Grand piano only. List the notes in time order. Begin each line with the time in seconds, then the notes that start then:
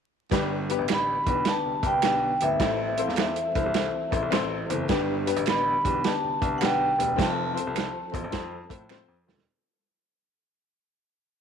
0.31 G1
0.79 A1
1.27 B1
1.65 C2
1.83 C2
2.03 B1
2.42 G#1
2.60 A1
3.07 E2
3.56 C2
3.66 C2
4.12 A1
4.22 C2
4.32 A1
4.70 F#1
4.89 G1
5.36 A1
5.85 B1
6.24 C2
6.42 C2
6.62 B1
6.99 E1
7.19 F1
7.67 C2
8.14 A1
8.24 A1
8.33 F2
8.70 A2
9.08 F2
9.28 E1